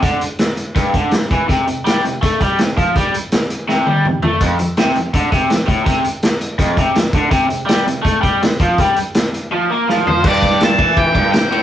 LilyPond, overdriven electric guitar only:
\new Staff \with { instrumentName = "Overdriven electric guitar" } { \clef bass \time 4/4 \key c \major \tempo 4 = 164 d8 r4. g,8 d8 g,8 e8 | c8 c8 g8 c8 a8 g8 c8 f8 | g8 r4. c8 g8 c8 a8 | f,8 f,8 c8 f,8 d8 c8 f,8 a,8 |
c8 r4. f,8 c8 f,8 d8 | c8 c8 g8 c8 a8 g8 c8 f8 | g8 r4. f8 bes8 f4 | g,4. e4 g,8 g,8 a,8 | }